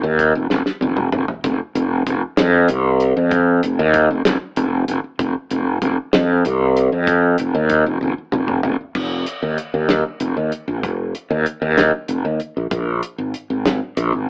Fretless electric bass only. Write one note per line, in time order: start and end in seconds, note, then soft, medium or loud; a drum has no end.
0.03 0.32 D#2 loud
0.35 0.49 F1 medium
0.51 0.65 F1 loud
0.67 muted fretless electric bass stroke soft
0.82 1.11 F1 medium
1.13 1.27 F1 medium
1.45 1.59 F1 medium
1.75 2.04 F1 loud
2.07 2.21 F1 medium
2.38 2.67 F2 medium
2.69 3.13 C2 medium
3.17 3.60 F2 medium
3.64 3.78 F1 medium
3.79 4.08 D#2 loud
4.10 4.25 F1 medium
4.26 4.40 F1 medium
4.42 muted fretless electric bass stroke soft
4.57 4.86 F1 loud
4.88 5.03 F1 medium
5.04 muted fretless electric bass stroke soft
5.19 5.34 F1 medium
5.51 5.80 F1 medium
5.82 5.96 F1 medium
6.14 6.43 F2 medium
6.46 6.89 C2 medium
6.92 7.36 F2 medium
7.40 7.54 F1 medium
7.55 7.83 D#2 medium
7.86 8.00 F1 medium
8.03 8.16 F1 medium
8.18 muted fretless electric bass stroke soft
8.33 8.62 F1 medium
8.64 8.79 F1 medium
8.81 muted fretless electric bass stroke soft
8.95 9.24 F1 medium
9.43 9.57 D#2 medium
9.74 10.03 D#2 medium
10.20 10.35 F1 medium
10.37 10.51 D#2 medium
10.68 10.84 A#1 medium
10.84 11.13 F1 medium
11.30 11.45 D#2 medium
11.62 11.91 D#2 medium
12.09 12.23 F1 medium
12.25 12.39 D#2 medium
12.57 12.71 A#1 medium
12.72 13.01 A#1 medium
13.18 13.33 G#1 medium
13.50 13.79 G#1 medium
13.97 14.12 A#1 medium
14.13 14.27 G#1 medium